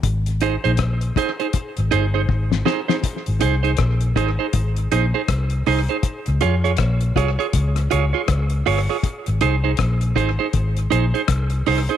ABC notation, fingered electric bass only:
X:1
M:4/4
L:1/16
Q:"Swing 16ths" 1/4=80
K:Ab
V:1 name="Fingered electric bass" clef=bass
A,,,3 B,,,3 z3 A,,, G,,,2 A,,,2 z2 | z A,,, C,,2 B,,,2 A,,, z A,,,2 B,,, z C,,2 C,, z | z D,, F,,2 B,,,2 C,, z D,,2 D,, z D,,2 G,,, z | z A,,, C,,2 B,,,2 A,,, z A,,,2 B,,, z C,,2 C,, z |]